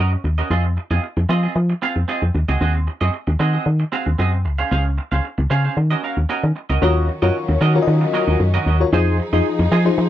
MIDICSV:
0, 0, Header, 1, 6, 480
1, 0, Start_track
1, 0, Tempo, 526316
1, 461, Time_signature, 4, 2, 24, 8
1, 9204, End_track
2, 0, Start_track
2, 0, Title_t, "Clean electric guitar"
2, 0, Program_c, 0, 27
2, 0, Note_on_c, 0, 61, 70
2, 0, Note_on_c, 0, 66, 77
2, 0, Note_on_c, 0, 70, 87
2, 0, Note_on_c, 0, 75, 86
2, 95, Note_off_c, 0, 75, 0
2, 99, Note_off_c, 0, 70, 0
2, 103, Note_off_c, 0, 66, 0
2, 145, Note_off_c, 0, 61, 0
2, 347, Note_on_c, 0, 75, 57
2, 352, Note_on_c, 0, 70, 54
2, 355, Note_on_c, 0, 66, 50
2, 358, Note_on_c, 0, 61, 46
2, 456, Note_off_c, 0, 61, 0
2, 459, Note_on_c, 0, 60, 77
2, 460, Note_off_c, 0, 66, 0
2, 460, Note_off_c, 0, 75, 0
2, 463, Note_off_c, 0, 70, 0
2, 463, Note_on_c, 0, 65, 89
2, 466, Note_on_c, 0, 68, 89
2, 471, Note_on_c, 0, 75, 90
2, 576, Note_off_c, 0, 75, 0
2, 581, Note_off_c, 0, 68, 0
2, 585, Note_off_c, 0, 65, 0
2, 625, Note_off_c, 0, 60, 0
2, 827, Note_on_c, 0, 75, 61
2, 831, Note_on_c, 0, 68, 60
2, 835, Note_on_c, 0, 65, 58
2, 838, Note_on_c, 0, 60, 53
2, 930, Note_off_c, 0, 60, 0
2, 933, Note_off_c, 0, 65, 0
2, 936, Note_off_c, 0, 68, 0
2, 938, Note_off_c, 0, 75, 0
2, 1178, Note_on_c, 0, 60, 92
2, 1183, Note_on_c, 0, 65, 80
2, 1185, Note_on_c, 0, 68, 83
2, 1190, Note_on_c, 0, 75, 89
2, 1294, Note_off_c, 0, 75, 0
2, 1298, Note_off_c, 0, 68, 0
2, 1303, Note_off_c, 0, 65, 0
2, 1305, Note_on_c, 0, 75, 65
2, 1306, Note_off_c, 0, 60, 0
2, 1309, Note_on_c, 0, 68, 58
2, 1314, Note_on_c, 0, 65, 57
2, 1316, Note_on_c, 0, 60, 53
2, 1408, Note_off_c, 0, 60, 0
2, 1412, Note_off_c, 0, 65, 0
2, 1415, Note_off_c, 0, 68, 0
2, 1417, Note_off_c, 0, 75, 0
2, 1659, Note_on_c, 0, 60, 83
2, 1664, Note_on_c, 0, 65, 85
2, 1668, Note_on_c, 0, 68, 88
2, 1671, Note_on_c, 0, 77, 95
2, 1778, Note_off_c, 0, 68, 0
2, 1782, Note_off_c, 0, 77, 0
2, 1783, Note_off_c, 0, 65, 0
2, 1826, Note_off_c, 0, 60, 0
2, 1897, Note_on_c, 0, 60, 85
2, 1902, Note_on_c, 0, 65, 79
2, 1905, Note_on_c, 0, 68, 87
2, 1909, Note_on_c, 0, 75, 87
2, 2015, Note_off_c, 0, 75, 0
2, 2020, Note_off_c, 0, 68, 0
2, 2023, Note_off_c, 0, 65, 0
2, 2064, Note_off_c, 0, 60, 0
2, 2266, Note_on_c, 0, 75, 65
2, 2270, Note_on_c, 0, 68, 59
2, 2274, Note_on_c, 0, 66, 59
2, 2278, Note_on_c, 0, 60, 49
2, 2367, Note_off_c, 0, 60, 0
2, 2373, Note_off_c, 0, 66, 0
2, 2376, Note_off_c, 0, 68, 0
2, 2378, Note_on_c, 0, 60, 82
2, 2380, Note_off_c, 0, 75, 0
2, 2384, Note_on_c, 0, 66, 74
2, 2387, Note_on_c, 0, 68, 72
2, 2391, Note_on_c, 0, 75, 74
2, 2494, Note_off_c, 0, 75, 0
2, 2499, Note_off_c, 0, 68, 0
2, 2502, Note_off_c, 0, 66, 0
2, 2545, Note_off_c, 0, 60, 0
2, 2743, Note_on_c, 0, 75, 66
2, 2749, Note_on_c, 0, 68, 60
2, 2752, Note_on_c, 0, 66, 58
2, 2756, Note_on_c, 0, 60, 50
2, 2846, Note_off_c, 0, 60, 0
2, 2850, Note_off_c, 0, 66, 0
2, 2852, Note_off_c, 0, 68, 0
2, 2854, Note_off_c, 0, 75, 0
2, 3095, Note_on_c, 0, 60, 73
2, 3100, Note_on_c, 0, 66, 79
2, 3103, Note_on_c, 0, 68, 78
2, 3107, Note_on_c, 0, 75, 73
2, 3209, Note_off_c, 0, 75, 0
2, 3215, Note_off_c, 0, 68, 0
2, 3218, Note_off_c, 0, 66, 0
2, 3220, Note_on_c, 0, 75, 57
2, 3223, Note_off_c, 0, 60, 0
2, 3226, Note_on_c, 0, 68, 52
2, 3229, Note_on_c, 0, 66, 52
2, 3233, Note_on_c, 0, 60, 50
2, 3325, Note_off_c, 0, 60, 0
2, 3328, Note_off_c, 0, 66, 0
2, 3331, Note_off_c, 0, 68, 0
2, 3333, Note_off_c, 0, 75, 0
2, 3575, Note_on_c, 0, 60, 78
2, 3580, Note_on_c, 0, 66, 80
2, 3583, Note_on_c, 0, 68, 82
2, 3588, Note_on_c, 0, 77, 77
2, 3699, Note_off_c, 0, 68, 0
2, 3701, Note_off_c, 0, 77, 0
2, 3702, Note_off_c, 0, 66, 0
2, 3743, Note_off_c, 0, 60, 0
2, 3815, Note_on_c, 0, 60, 80
2, 3821, Note_on_c, 0, 66, 78
2, 3825, Note_on_c, 0, 68, 79
2, 3828, Note_on_c, 0, 75, 87
2, 3933, Note_off_c, 0, 75, 0
2, 3937, Note_off_c, 0, 68, 0
2, 3940, Note_off_c, 0, 66, 0
2, 3984, Note_off_c, 0, 60, 0
2, 4181, Note_on_c, 0, 77, 60
2, 4186, Note_on_c, 0, 72, 59
2, 4190, Note_on_c, 0, 68, 52
2, 4194, Note_on_c, 0, 61, 51
2, 4285, Note_off_c, 0, 61, 0
2, 4289, Note_off_c, 0, 68, 0
2, 4293, Note_off_c, 0, 72, 0
2, 4296, Note_off_c, 0, 77, 0
2, 4296, Note_on_c, 0, 61, 77
2, 4300, Note_on_c, 0, 68, 80
2, 4304, Note_on_c, 0, 72, 78
2, 4307, Note_on_c, 0, 77, 79
2, 4414, Note_off_c, 0, 77, 0
2, 4419, Note_off_c, 0, 72, 0
2, 4422, Note_off_c, 0, 68, 0
2, 4464, Note_off_c, 0, 61, 0
2, 4665, Note_on_c, 0, 77, 55
2, 4671, Note_on_c, 0, 72, 51
2, 4674, Note_on_c, 0, 68, 48
2, 4678, Note_on_c, 0, 61, 47
2, 4769, Note_off_c, 0, 61, 0
2, 4773, Note_off_c, 0, 68, 0
2, 4775, Note_off_c, 0, 72, 0
2, 4778, Note_off_c, 0, 77, 0
2, 5017, Note_on_c, 0, 61, 79
2, 5023, Note_on_c, 0, 68, 87
2, 5026, Note_on_c, 0, 72, 81
2, 5030, Note_on_c, 0, 77, 89
2, 5136, Note_off_c, 0, 77, 0
2, 5139, Note_off_c, 0, 72, 0
2, 5143, Note_off_c, 0, 68, 0
2, 5147, Note_on_c, 0, 77, 60
2, 5148, Note_off_c, 0, 61, 0
2, 5150, Note_on_c, 0, 72, 56
2, 5154, Note_on_c, 0, 68, 63
2, 5158, Note_on_c, 0, 61, 51
2, 5251, Note_off_c, 0, 61, 0
2, 5261, Note_off_c, 0, 68, 0
2, 5264, Note_off_c, 0, 72, 0
2, 5266, Note_off_c, 0, 77, 0
2, 5385, Note_on_c, 0, 75, 76
2, 5391, Note_on_c, 0, 70, 75
2, 5394, Note_on_c, 0, 66, 73
2, 5398, Note_on_c, 0, 61, 73
2, 5488, Note_off_c, 0, 61, 0
2, 5492, Note_off_c, 0, 66, 0
2, 5496, Note_off_c, 0, 70, 0
2, 5499, Note_on_c, 0, 61, 59
2, 5503, Note_on_c, 0, 66, 58
2, 5506, Note_off_c, 0, 75, 0
2, 5507, Note_on_c, 0, 70, 64
2, 5510, Note_on_c, 0, 77, 69
2, 5620, Note_off_c, 0, 70, 0
2, 5623, Note_off_c, 0, 77, 0
2, 5624, Note_off_c, 0, 66, 0
2, 5632, Note_off_c, 0, 61, 0
2, 5738, Note_on_c, 0, 61, 87
2, 5742, Note_on_c, 0, 66, 92
2, 5746, Note_on_c, 0, 70, 91
2, 5749, Note_on_c, 0, 75, 87
2, 5855, Note_off_c, 0, 75, 0
2, 5859, Note_off_c, 0, 70, 0
2, 5864, Note_off_c, 0, 66, 0
2, 5905, Note_off_c, 0, 61, 0
2, 6106, Note_on_c, 0, 75, 58
2, 6109, Note_on_c, 0, 70, 58
2, 6114, Note_on_c, 0, 66, 56
2, 6118, Note_on_c, 0, 61, 48
2, 6207, Note_off_c, 0, 61, 0
2, 6212, Note_off_c, 0, 66, 0
2, 6216, Note_off_c, 0, 70, 0
2, 6218, Note_on_c, 0, 61, 96
2, 6219, Note_off_c, 0, 75, 0
2, 6223, Note_on_c, 0, 66, 93
2, 6226, Note_on_c, 0, 70, 98
2, 6230, Note_on_c, 0, 75, 110
2, 6441, Note_off_c, 0, 61, 0
2, 6444, Note_off_c, 0, 66, 0
2, 6446, Note_off_c, 0, 70, 0
2, 6447, Note_off_c, 0, 75, 0
2, 6586, Note_on_c, 0, 75, 72
2, 6590, Note_on_c, 0, 70, 66
2, 6594, Note_on_c, 0, 66, 61
2, 6599, Note_on_c, 0, 61, 57
2, 6706, Note_off_c, 0, 75, 0
2, 6708, Note_off_c, 0, 70, 0
2, 6710, Note_off_c, 0, 66, 0
2, 6712, Note_off_c, 0, 61, 0
2, 6939, Note_on_c, 0, 61, 88
2, 6944, Note_on_c, 0, 66, 92
2, 6947, Note_on_c, 0, 70, 88
2, 6951, Note_on_c, 0, 75, 103
2, 7056, Note_off_c, 0, 75, 0
2, 7060, Note_off_c, 0, 70, 0
2, 7064, Note_off_c, 0, 66, 0
2, 7105, Note_off_c, 0, 61, 0
2, 7420, Note_on_c, 0, 61, 91
2, 7424, Note_on_c, 0, 66, 91
2, 7429, Note_on_c, 0, 70, 85
2, 7432, Note_on_c, 0, 75, 84
2, 7537, Note_off_c, 0, 75, 0
2, 7541, Note_off_c, 0, 70, 0
2, 7546, Note_off_c, 0, 66, 0
2, 7548, Note_on_c, 0, 75, 69
2, 7549, Note_off_c, 0, 61, 0
2, 7552, Note_on_c, 0, 70, 64
2, 7557, Note_on_c, 0, 66, 56
2, 7560, Note_on_c, 0, 61, 57
2, 7650, Note_off_c, 0, 61, 0
2, 7654, Note_off_c, 0, 66, 0
2, 7656, Note_off_c, 0, 70, 0
2, 7658, Note_off_c, 0, 75, 0
2, 7787, Note_on_c, 0, 75, 89
2, 7792, Note_on_c, 0, 70, 83
2, 7795, Note_on_c, 0, 66, 76
2, 7799, Note_on_c, 0, 61, 73
2, 7890, Note_off_c, 0, 61, 0
2, 7895, Note_off_c, 0, 66, 0
2, 7899, Note_off_c, 0, 70, 0
2, 7901, Note_on_c, 0, 61, 65
2, 7903, Note_off_c, 0, 75, 0
2, 7906, Note_on_c, 0, 66, 62
2, 7910, Note_on_c, 0, 70, 69
2, 7914, Note_on_c, 0, 75, 73
2, 8018, Note_off_c, 0, 75, 0
2, 8023, Note_off_c, 0, 70, 0
2, 8025, Note_off_c, 0, 66, 0
2, 8033, Note_off_c, 0, 61, 0
2, 8140, Note_on_c, 0, 63, 86
2, 8145, Note_on_c, 0, 68, 105
2, 8149, Note_on_c, 0, 72, 103
2, 8152, Note_on_c, 0, 75, 104
2, 8362, Note_off_c, 0, 63, 0
2, 8365, Note_off_c, 0, 68, 0
2, 8367, Note_off_c, 0, 72, 0
2, 8368, Note_off_c, 0, 75, 0
2, 8507, Note_on_c, 0, 75, 65
2, 8512, Note_on_c, 0, 72, 55
2, 8516, Note_on_c, 0, 68, 57
2, 8519, Note_on_c, 0, 63, 57
2, 8627, Note_off_c, 0, 75, 0
2, 8629, Note_off_c, 0, 72, 0
2, 8631, Note_off_c, 0, 68, 0
2, 8632, Note_off_c, 0, 63, 0
2, 8861, Note_on_c, 0, 63, 90
2, 8864, Note_on_c, 0, 68, 107
2, 8869, Note_on_c, 0, 72, 107
2, 8872, Note_on_c, 0, 75, 106
2, 8977, Note_off_c, 0, 75, 0
2, 8981, Note_off_c, 0, 72, 0
2, 8986, Note_off_c, 0, 68, 0
2, 9026, Note_off_c, 0, 63, 0
2, 9204, End_track
3, 0, Start_track
3, 0, Title_t, "FM electric piano"
3, 0, Program_c, 1, 5
3, 6217, Note_on_c, 1, 65, 93
3, 6219, Note_on_c, 1, 66, 90
3, 6221, Note_on_c, 1, 70, 83
3, 6224, Note_on_c, 1, 73, 105
3, 6463, Note_off_c, 1, 65, 0
3, 6465, Note_off_c, 1, 66, 0
3, 6466, Note_off_c, 1, 70, 0
3, 6467, Note_off_c, 1, 73, 0
3, 6585, Note_on_c, 1, 65, 96
3, 6588, Note_on_c, 1, 66, 77
3, 6591, Note_on_c, 1, 70, 74
3, 6592, Note_on_c, 1, 73, 102
3, 6907, Note_off_c, 1, 65, 0
3, 6908, Note_off_c, 1, 66, 0
3, 6910, Note_off_c, 1, 70, 0
3, 6910, Note_off_c, 1, 73, 0
3, 7068, Note_on_c, 1, 65, 107
3, 7071, Note_on_c, 1, 66, 92
3, 7072, Note_on_c, 1, 70, 97
3, 7075, Note_on_c, 1, 73, 91
3, 7126, Note_off_c, 1, 73, 0
3, 7134, Note_on_c, 1, 75, 114
3, 7715, Note_off_c, 1, 65, 0
3, 7717, Note_off_c, 1, 66, 0
3, 7717, Note_off_c, 1, 70, 0
3, 7748, Note_off_c, 1, 75, 0
3, 8027, Note_on_c, 1, 65, 84
3, 8030, Note_on_c, 1, 66, 77
3, 8033, Note_on_c, 1, 70, 78
3, 8034, Note_on_c, 1, 73, 101
3, 8104, Note_off_c, 1, 65, 0
3, 8105, Note_off_c, 1, 66, 0
3, 8107, Note_off_c, 1, 70, 0
3, 8108, Note_off_c, 1, 73, 0
3, 8140, Note_on_c, 1, 63, 96
3, 8143, Note_on_c, 1, 65, 89
3, 8144, Note_on_c, 1, 68, 85
3, 8147, Note_on_c, 1, 72, 106
3, 8385, Note_off_c, 1, 63, 0
3, 8386, Note_off_c, 1, 65, 0
3, 8387, Note_off_c, 1, 68, 0
3, 8388, Note_off_c, 1, 72, 0
3, 8506, Note_on_c, 1, 63, 91
3, 8508, Note_on_c, 1, 65, 88
3, 8510, Note_on_c, 1, 68, 83
3, 8513, Note_on_c, 1, 75, 99
3, 8828, Note_off_c, 1, 63, 0
3, 8828, Note_off_c, 1, 65, 0
3, 8830, Note_off_c, 1, 68, 0
3, 8831, Note_off_c, 1, 75, 0
3, 8985, Note_on_c, 1, 63, 102
3, 8987, Note_on_c, 1, 65, 93
3, 8989, Note_on_c, 1, 68, 88
3, 8991, Note_on_c, 1, 72, 109
3, 9204, Note_off_c, 1, 63, 0
3, 9204, Note_off_c, 1, 65, 0
3, 9204, Note_off_c, 1, 68, 0
3, 9204, Note_off_c, 1, 72, 0
3, 9204, End_track
4, 0, Start_track
4, 0, Title_t, "String section"
4, 0, Program_c, 2, 48
4, 6222, Note_on_c, 2, 51, 80
4, 6222, Note_on_c, 2, 61, 72
4, 6223, Note_on_c, 2, 54, 90
4, 8122, Note_off_c, 2, 51, 0
4, 8122, Note_off_c, 2, 61, 0
4, 8123, Note_off_c, 2, 54, 0
4, 8142, Note_on_c, 2, 53, 88
4, 8142, Note_on_c, 2, 63, 78
4, 8143, Note_on_c, 2, 68, 100
4, 9204, Note_off_c, 2, 53, 0
4, 9204, Note_off_c, 2, 63, 0
4, 9204, Note_off_c, 2, 68, 0
4, 9204, End_track
5, 0, Start_track
5, 0, Title_t, "FM bass"
5, 0, Program_c, 3, 39
5, 0, Note_on_c, 3, 42, 98
5, 147, Note_off_c, 3, 42, 0
5, 220, Note_on_c, 3, 39, 80
5, 386, Note_off_c, 3, 39, 0
5, 460, Note_on_c, 3, 41, 102
5, 714, Note_off_c, 3, 41, 0
5, 827, Note_on_c, 3, 41, 89
5, 905, Note_off_c, 3, 41, 0
5, 1066, Note_on_c, 3, 41, 101
5, 1145, Note_off_c, 3, 41, 0
5, 1178, Note_on_c, 3, 53, 98
5, 1345, Note_off_c, 3, 53, 0
5, 1420, Note_on_c, 3, 53, 106
5, 1586, Note_off_c, 3, 53, 0
5, 1787, Note_on_c, 3, 41, 76
5, 1865, Note_off_c, 3, 41, 0
5, 2027, Note_on_c, 3, 41, 86
5, 2105, Note_off_c, 3, 41, 0
5, 2139, Note_on_c, 3, 39, 92
5, 2228, Note_off_c, 3, 39, 0
5, 2267, Note_on_c, 3, 37, 84
5, 2345, Note_off_c, 3, 37, 0
5, 2379, Note_on_c, 3, 39, 105
5, 2634, Note_off_c, 3, 39, 0
5, 2747, Note_on_c, 3, 42, 85
5, 2825, Note_off_c, 3, 42, 0
5, 2986, Note_on_c, 3, 39, 105
5, 3065, Note_off_c, 3, 39, 0
5, 3099, Note_on_c, 3, 51, 91
5, 3265, Note_off_c, 3, 51, 0
5, 3338, Note_on_c, 3, 51, 103
5, 3505, Note_off_c, 3, 51, 0
5, 3707, Note_on_c, 3, 39, 92
5, 3785, Note_off_c, 3, 39, 0
5, 3820, Note_on_c, 3, 42, 81
5, 4060, Note_on_c, 3, 37, 98
5, 4074, Note_off_c, 3, 42, 0
5, 4226, Note_off_c, 3, 37, 0
5, 4300, Note_on_c, 3, 37, 108
5, 4554, Note_off_c, 3, 37, 0
5, 4668, Note_on_c, 3, 37, 91
5, 4746, Note_off_c, 3, 37, 0
5, 4908, Note_on_c, 3, 37, 106
5, 4986, Note_off_c, 3, 37, 0
5, 5021, Note_on_c, 3, 49, 94
5, 5187, Note_off_c, 3, 49, 0
5, 5261, Note_on_c, 3, 51, 95
5, 5427, Note_off_c, 3, 51, 0
5, 5627, Note_on_c, 3, 39, 87
5, 5705, Note_off_c, 3, 39, 0
5, 5869, Note_on_c, 3, 51, 99
5, 5946, Note_off_c, 3, 51, 0
5, 6107, Note_on_c, 3, 37, 85
5, 6186, Note_off_c, 3, 37, 0
5, 6221, Note_on_c, 3, 39, 109
5, 6475, Note_off_c, 3, 39, 0
5, 6589, Note_on_c, 3, 42, 86
5, 6666, Note_off_c, 3, 42, 0
5, 6828, Note_on_c, 3, 39, 102
5, 6906, Note_off_c, 3, 39, 0
5, 6942, Note_on_c, 3, 51, 101
5, 7107, Note_off_c, 3, 51, 0
5, 7181, Note_on_c, 3, 51, 108
5, 7347, Note_off_c, 3, 51, 0
5, 7547, Note_on_c, 3, 39, 98
5, 7625, Note_off_c, 3, 39, 0
5, 7660, Note_on_c, 3, 42, 95
5, 7826, Note_off_c, 3, 42, 0
5, 7900, Note_on_c, 3, 39, 87
5, 8066, Note_off_c, 3, 39, 0
5, 8141, Note_on_c, 3, 41, 106
5, 8394, Note_off_c, 3, 41, 0
5, 8507, Note_on_c, 3, 41, 92
5, 8585, Note_off_c, 3, 41, 0
5, 8747, Note_on_c, 3, 41, 106
5, 8826, Note_off_c, 3, 41, 0
5, 8861, Note_on_c, 3, 53, 109
5, 9027, Note_off_c, 3, 53, 0
5, 9101, Note_on_c, 3, 53, 102
5, 9204, Note_off_c, 3, 53, 0
5, 9204, End_track
6, 0, Start_track
6, 0, Title_t, "Muted clean electric guitar strokes"
6, 106, Note_on_c, 9, 29, 38
6, 197, Note_off_c, 9, 29, 0
6, 221, Note_on_c, 9, 29, 36
6, 313, Note_off_c, 9, 29, 0
6, 587, Note_on_c, 9, 29, 37
6, 678, Note_off_c, 9, 29, 0
6, 701, Note_on_c, 9, 29, 38
6, 792, Note_off_c, 9, 29, 0
6, 941, Note_on_c, 9, 29, 39
6, 1032, Note_off_c, 9, 29, 0
6, 1067, Note_on_c, 9, 29, 34
6, 1158, Note_off_c, 9, 29, 0
6, 1419, Note_on_c, 9, 29, 38
6, 1511, Note_off_c, 9, 29, 0
6, 1547, Note_on_c, 9, 29, 42
6, 1638, Note_off_c, 9, 29, 0
6, 1786, Note_on_c, 9, 29, 51
6, 1877, Note_off_c, 9, 29, 0
6, 2026, Note_on_c, 9, 29, 44
6, 2118, Note_off_c, 9, 29, 0
6, 2139, Note_on_c, 9, 29, 42
6, 2230, Note_off_c, 9, 29, 0
6, 2505, Note_on_c, 9, 29, 49
6, 2596, Note_off_c, 9, 29, 0
6, 2619, Note_on_c, 9, 29, 45
6, 2710, Note_off_c, 9, 29, 0
6, 2857, Note_on_c, 9, 29, 37
6, 2948, Note_off_c, 9, 29, 0
6, 2984, Note_on_c, 9, 29, 42
6, 3075, Note_off_c, 9, 29, 0
6, 3336, Note_on_c, 9, 29, 39
6, 3427, Note_off_c, 9, 29, 0
6, 3462, Note_on_c, 9, 29, 45
6, 3554, Note_off_c, 9, 29, 0
6, 3705, Note_on_c, 9, 29, 50
6, 3796, Note_off_c, 9, 29, 0
6, 3944, Note_on_c, 9, 29, 42
6, 4035, Note_off_c, 9, 29, 0
6, 4056, Note_on_c, 9, 29, 38
6, 4148, Note_off_c, 9, 29, 0
6, 4425, Note_on_c, 9, 29, 37
6, 4516, Note_off_c, 9, 29, 0
6, 4538, Note_on_c, 9, 29, 45
6, 4629, Note_off_c, 9, 29, 0
6, 4780, Note_on_c, 9, 29, 38
6, 4871, Note_off_c, 9, 29, 0
6, 4906, Note_on_c, 9, 29, 37
6, 4997, Note_off_c, 9, 29, 0
6, 5262, Note_on_c, 9, 29, 38
6, 5353, Note_off_c, 9, 29, 0
6, 5627, Note_on_c, 9, 29, 43
6, 5718, Note_off_c, 9, 29, 0
6, 5866, Note_on_c, 9, 29, 47
6, 5957, Note_off_c, 9, 29, 0
6, 5978, Note_on_c, 9, 29, 34
6, 6070, Note_off_c, 9, 29, 0
6, 6461, Note_on_c, 9, 29, 49
6, 6552, Note_off_c, 9, 29, 0
6, 6827, Note_on_c, 9, 29, 45
6, 6919, Note_off_c, 9, 29, 0
6, 7067, Note_on_c, 9, 29, 49
6, 7158, Note_off_c, 9, 29, 0
6, 7181, Note_on_c, 9, 29, 41
6, 7272, Note_off_c, 9, 29, 0
6, 7307, Note_on_c, 9, 29, 50
6, 7398, Note_off_c, 9, 29, 0
6, 7661, Note_on_c, 9, 29, 46
6, 7752, Note_off_c, 9, 29, 0
6, 8029, Note_on_c, 9, 29, 44
6, 8120, Note_off_c, 9, 29, 0
6, 8381, Note_on_c, 9, 29, 49
6, 8472, Note_off_c, 9, 29, 0
6, 8750, Note_on_c, 9, 29, 53
6, 8841, Note_off_c, 9, 29, 0
6, 8988, Note_on_c, 9, 29, 40
6, 9079, Note_off_c, 9, 29, 0
6, 9099, Note_on_c, 9, 29, 40
6, 9190, Note_off_c, 9, 29, 0
6, 9204, End_track
0, 0, End_of_file